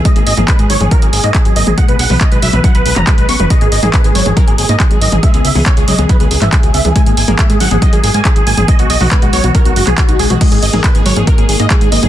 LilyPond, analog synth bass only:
\new Staff \with { instrumentName = "Analog synth bass" } { \clef bass \time 4/4 \key gis \minor \tempo 4 = 139 r16 gis,,16 gis,,16 gis,,16 r16 gis,,16 gis,,16 gis,,16 r16 gis,,16 gis,,16 gis,16 r16 gis,,16 gis,,16 gis,,16 | r16 b,,16 b,,16 b,,16 r16 b,,16 b,,16 b,,16 r16 b,,16 b,,16 fis,,16 r16 b,,16 b,,16 fis,,16 | r16 gis,,16 gis,,16 gis,,16 r16 gis,,16 gis,,16 gis,,16 r16 gis,,16 gis,,16 gis,16 r16 gis,,16 gis,,16 gis,,16 | r16 cis,16 cis,16 cis,16 r16 cis,16 cis,16 cis,16 r16 cis,16 cis,16 gis,,16 r16 cis,16 cis,16 cis,16 |
r16 gis,,16 gis,,16 gis,,16 r16 gis,,16 gis,,16 gis,,16 r16 gis,,16 gis,,16 gis,16 r16 gis,,16 gis,,16 gis,,16 | r16 b,,16 b,,16 b,,16 r16 b,,16 b,,16 b,,16 r16 b,,16 fis,,16 b,,16 r16 b,,16 b,,16 b,,16 | r16 gis,,16 gis,,16 gis,,16 r16 gis,,16 gis,,16 gis,,16 r16 gis,,16 gis,,16 gis,16 r16 gis,,16 gis,,16 gis,,16 | }